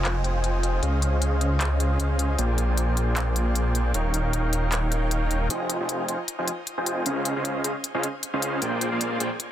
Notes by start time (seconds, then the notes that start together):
Already playing: F1 F4 C5 D#5 G5 G#5
0.05 clap, closed hi-hat
0.24 closed hi-hat
0.44 closed hi-hat
0.63 closed hi-hat
0.83 C#2 C#4 G#4 C5 D#5 F5, closed hi-hat
1.02 closed hi-hat
1.22 closed hi-hat
1.41 closed hi-hat
1.61 clap, closed hi-hat
1.80 closed hi-hat
2.00 closed hi-hat
2.19 closed hi-hat
2.38 A#1 A#3 F4 G#4 C5 D5 G5, closed hi-hat
2.58 closed hi-hat
2.77 closed hi-hat
2.97 closed hi-hat
3.17 clap, closed hi-hat
3.36 closed hi-hat
3.55 closed hi-hat
3.75 closed hi-hat
3.94 D#1 D#4 A#4 C#5 F5 G5, closed hi-hat
4.14 closed hi-hat
4.33 closed hi-hat
4.53 closed hi-hat
4.72 clap, closed hi-hat
4.92 closed hi-hat
5.11 closed hi-hat
5.31 closed hi-hat
5.50 F1 F4 C5 D#5 G5 G#5, closed hi-hat
5.70 closed hi-hat
5.80 F1 F4 C5 D#5 G5 G#5
5.89 closed hi-hat
6.08 F1 F4 C5 D#5 G5 G#5, closed hi-hat
6.28 closed hi-hat
6.39 F1 F4 C5 D#5 G5 G#5
6.48 closed hi-hat
6.67 closed hi-hat
6.78 F1 F4 C5 D#5 G5 G#5
6.86 closed hi-hat
7.06 C#2 C#4 G#4 C5 D#5 F5, closed hi-hat
7.25 closed hi-hat
7.36 C#2 C#4 G#4 C5 D#5 F5
7.45 closed hi-hat
7.64 C#2 C#4 G#4 C5 D#5 F5, closed hi-hat
7.84 closed hi-hat
7.94 C#2 C#4 G#4 C5 D#5 F5
8.03 closed hi-hat
8.23 closed hi-hat
8.33 C#2 C#4 G#4 C5 D#5 F5
8.42 closed hi-hat
8.62 A#1 A#3 F4 G#4 C5 D5 G5, closed hi-hat
8.81 closed hi-hat
8.92 A#1 A#3 F4 G#4 C5 D5 F5
9.01 closed hi-hat
9.20 A#1 A#3 F4 G#4 C5 D5 G5, closed hi-hat
9.40 closed hi-hat